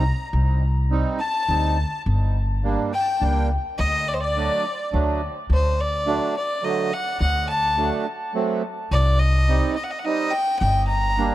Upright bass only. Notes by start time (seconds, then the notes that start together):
0.33 C2
1.49 D2
2.06 G1
3.22 C#2
3.79 D2
4.94 D2
5.50 D2
7.20 D2
8.91 C2
10.61 G1